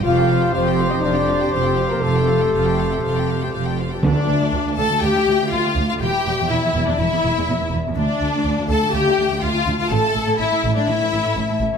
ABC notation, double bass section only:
X:1
M:4/4
L:1/16
Q:1/4=122
K:Fmix
V:1 name="Double bass section" clef=bass
F,,,4 F,,,4 F,,,4 F,,,4 | F,,,4 F,,,4 F,,,4 F,,,4 | [K:Dm] D,, z D,, z D,, z D,, z D,, z D,, z D,, z D,, z | E,,, z E,,, z E,,, z E,,, z E,,, z E,,, z E,,, z E,,, z |
D,, z D,, z D,, z D,, z D,, z D,, z D,, z D,, z | A,,, z A,,, z A,,, z A,,, z A,,, z A,,, z A,,, z A,,, z |]